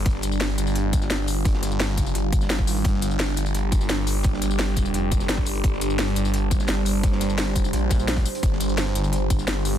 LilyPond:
<<
  \new Staff \with { instrumentName = "Ambient pad" } { \time 4/4 \key c \minor \tempo 4 = 172 << { f'1~ | f'1 | g'1~ | g'1 |
c''1~ | c''1 | g'1 | } \\ { <g d'>1~ | <g d'>1~ | <g d'>1~ | <g d'>1~ |
<g d'>1~ | <g d'>1~ | <g d'>1 | } >> }
  \new Staff \with { instrumentName = "Detuned saw bass" } { \clef bass \time 4/4 \key c \minor g,,8 g,,4 g,,4. g,,4~ | g,,8 g,,4. g,,4. aes,,8 | g,,8 g,,4 g,,4. g,,4~ | g,,8 g,,4. f,,4 g,,4 |
g,,8 g,,4 g,,4. g,,4~ | g,,8 g,,4. bes,,4. r8 | g,,8 g,,4 g,,4. g,,4 | }
  \new DrumStaff \with { instrumentName = "Drums" } \drummode { \time 4/4 <hh bd>16 sn16 <hh tamb>16 tamb16 <hh sn>16 hh16 <hh tamb>16 <hh tamb>16 hh8 <hh bd tamb>16 <sn tamb>16 <hh sn>8 <hh hho tamb>8 | <hh bd>16 sn16 <hh sn tamb>16 tamb16 <hh sn>8 <hh bd tamb>16 <hh tamb>16 hh8 <hh bd tamb>16 <sn tamb>16 <hh sn>16 bd16 <hh hho tamb>16 hh16 | <hh bd>16 sn16 <hh tamb>16 tamb16 <hh sn>16 hh16 <hh tamb>16 <hh tamb>16 hh8 <hh bd tamb>16 <sn tamb>16 <hh sn>8 <hh hho tamb>8 | <hh bd>16 sn16 <hh sn tamb>16 tamb16 <hh sn>8 <hh bd tamb>16 <hh tamb>16 hh8 <hh bd tamb>16 <sn tamb>16 <hh sn>16 bd16 <hh hho tamb>16 hh16 |
<hh bd>16 sn16 <hh tamb>16 tamb16 <hh sn>16 hh16 <hh tamb>16 <hh tamb>16 hh8 <hh bd tamb>16 <sn tamb>16 <hh sn>8 <hh hho tamb>8 | <hh bd>16 sn16 <hh sn tamb>16 tamb16 <hh sn>8 <hh bd tamb>16 <hh tamb>16 hh8 <hh bd sn tamb>16 <hh tamb>16 <hh sn>16 <hh bd sn>16 <hh hho tamb>16 hh16 | <hh bd>16 sn16 <hh tamb>16 tamb16 <hh sn>16 hh16 <hh tamb>16 <hh tamb>16 hh8 <hh bd tamb>16 <sn tamb>16 <hh sn>8 <hh hho tamb>8 | }
>>